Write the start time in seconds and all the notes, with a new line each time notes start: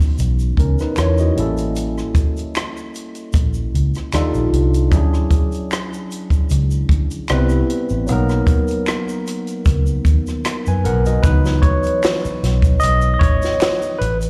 Already playing: E3 B3 C#4 D#4 F#4
0.01 shaker
0.18 B1, closed hi-hat, shaker
0.39 shaker
0.57 C#2 C#4 A#4, kick, closed hi-hat
0.79 D#4 B4, cross-stick, shaker
0.96 E2 E4 C#5, finger snap, cross-stick, closed hi-hat, shaker
1.18 F#4 D#5, shaker
1.35 A1 G3 A#3 C#4, closed hi-hat
1.39 E4 A4
1.57 closed hi-hat, shaker
1.76 closed hi-hat, shaker
1.98 cross-stick, shaker
2.15 kick, closed hi-hat, shaker
2.37 closed hi-hat, shaker
2.55 finger snap, cross-stick, closed hi-hat, shaker
2.77 shaker
2.94 closed hi-hat, shaker
3.15 closed hi-hat, shaker
3.33 A#1, kick, closed hi-hat, shaker
3.54 shaker
3.74 C#2, closed hi-hat
3.94 cross-stick, closed hi-hat, shaker
4.12 D#2 G3 D4 D#4 F4 A4, finger snap, cross-stick, closed hi-hat, shaker
4.34 A#1, shaker
4.53 C2, closed hi-hat
4.74 closed hi-hat, shaker
4.90 D2 F#3 C#4 D4 E4, kick, closed hi-hat, shaker
4.96 G#4
5.13 cross-stick, shaker
5.31 kick, closed hi-hat, shaker
5.52 closed hi-hat, shaker
5.71 finger snap, cross-stick, closed hi-hat, shaker
5.93 shaker
6.11 closed hi-hat, shaker
6.30 kick, closed hi-hat, shaker
6.50 C#2, closed hi-hat, shaker
6.71 shaker
6.89 D2, kick, closed hi-hat
7.11 closed hi-hat, shaker
7.28 C2 G3 B3 C4 E4, finger snap, cross-stick, closed hi-hat, shaker
7.32 B4
7.49 shaker
7.70 closed hi-hat
7.89 A1, shaker
8.07 B1 F#3 A#3 B3 D#4, closed hi-hat, shaker
8.12 A#4
8.29 cross-stick, shaker
8.47 kick, closed hi-hat, shaker
8.68 closed hi-hat, shaker
8.86 finger snap, cross-stick, closed hi-hat, shaker
9.09 shaker
9.26 cross-stick, closed hi-hat, shaker
9.47 closed hi-hat, shaker
9.66 C#2, kick, closed hi-hat, shaker
9.86 shaker
10.05 D#2, kick, closed hi-hat, shaker
10.27 cross-stick, shaker
10.45 finger snap, cross-stick, closed hi-hat, shaker
10.66 F#2 B4 G#5, shaker
10.85 B1 A#4 F#5, closed hi-hat
11.05 F#4 D#5, closed hi-hat, shaker
11.23 C#2 E3 F#3 B3 D#4 B4, kick, closed hi-hat, shaker
11.45 snare, shaker
11.62 C#5, kick, closed hi-hat
11.83 closed hi-hat, shaker
12.03 finger snap, snare, closed hi-hat, shaker
12.25 muted fingered electric bass stroke, shaker
12.43 B1, snare, closed hi-hat
12.62 kick, closed hi-hat, shaker
12.80 B1 D#5, closed hi-hat, shaker
13.01 shaker
13.14 D#5
13.19 G#1 C#5, kick, closed hi-hat
13.42 snare, shaker
13.60 finger snap, snare, closed hi-hat, shaker
13.82 shaker
13.98 A1 B4, closed hi-hat
14.21 closed hi-hat, shaker